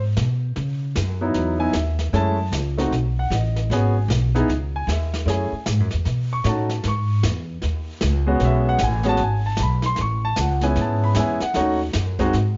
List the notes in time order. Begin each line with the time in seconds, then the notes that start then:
Already playing: G#2
0.16 B2, snare, hi-hat pedal
0.56 C#3, brush sweep, snare
0.95 F#2, snare, hi-hat pedal
1.21 F#3 B3 D#4 E4
1.34 E2, brush sweep, snare
1.59 F#3 B3 D#4 E4 G#5
1.73 D#2 E5, snare, hi-hat pedal
1.99 snare
2.13 F#2 G#3 A3 C#4 E4 A5, brush sweep, snare
2.52 C#2, snare, hi-hat pedal
2.78 A3 C4 D#4 F#4, snare
2.91 B1, brush sweep, snare
3.19 F#5
3.30 A1, snare, hi-hat pedal
3.35 D#5
3.56 snare
3.70 G#1 B3 C#4 F#4 G#4 G#5, brush sweep, snare
4.08 B1, snare, hi-hat pedal
4.35 B3 D#4 E4 G#4, snare
4.48 C#2, brush sweep, snare
4.76 G#5
4.87 D#2 E5, snare, hi-hat pedal
5.14 snare
5.26 F#2 A3 C#4 E4 G#4, brush sweep, snare
5.30 G#5
5.52 muted upright bass stroke
5.66 G#2, snare, hi-hat pedal
5.80 F#2
5.91 E2, snare
6.05 B2, brush sweep, snare
6.33 C#6
6.44 A2 A3 C#4 D#4 F#4, snare, hi-hat pedal
6.49 A5
6.69 snare
6.83 G#2, brush sweep, snare
6.88 C#6
7.23 E2, snare, hi-hat pedal
7.62 D#2, brush sweep, snare
8.01 C#2, snare, hi-hat pedal
8.27 G#3 B3 C#4 F#4
8.40 B1, brush sweep, snare
8.45 E5
8.69 F#5
8.78 A1 G5, snare, hi-hat pedal
8.84 G#5
9.03 G#3 B3 C#4 F#4, snare
9.09 A5
9.17 G#1, brush sweep, snare
9.24 G#5
9.46 A5
9.57 B1, snare, hi-hat pedal
9.61 B5
9.82 C6, snare
9.96 A1, brush sweep, snare
10.01 C#6
10.25 A5
10.36 C#2, snare, hi-hat pedal
10.41 F#5
10.61 G#3 B3 C#4 E4 G#5, snare
10.76 G#2, brush sweep, snare
10.81 A5
11.04 B5
11.14 E2 G#3 B3 C#4 E4, snare, hi-hat pedal
11.20 G#5
11.40 F#5, muted upright bass stroke, snare
11.54 D#2 A3 C#4 D#4 F#4, brush sweep, snare
11.93 F#2, snare, hi-hat pedal
12.19 G#3 C4 D#4 F#4, kick, snare
12.33 G#2, brush sweep, snare